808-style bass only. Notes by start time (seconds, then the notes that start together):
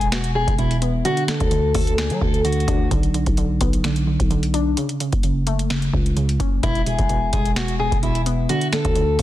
Already playing: E1
0.48 E1
1.41 D2
1.75 D2
2.10 F#3
2.21 D2
2.68 D2
2.91 B1
3.27 B1
3.61 B1
4.20 B1
5.13 F#1
5.93 C#2
6.40 F#1
6.63 E1
6.99 E1
7.33 E1
7.92 E1
8.85 D2
9.19 D2